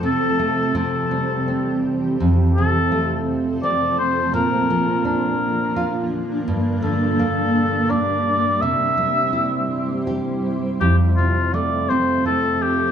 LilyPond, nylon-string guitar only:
\new Staff \with { instrumentName = "Nylon-string guitar" } { \clef bass \time 3/4 \key f \major \tempo 4 = 84 c8 a8 c8 g8 c'4 | f,8 c8 a4 c'4 | bes,8 f8 d'4 f'4 | g,8 d8 bes4 d'4 |
c8 g8 e'4 g'4 | f,8 c8 a8 c'8 a4 | }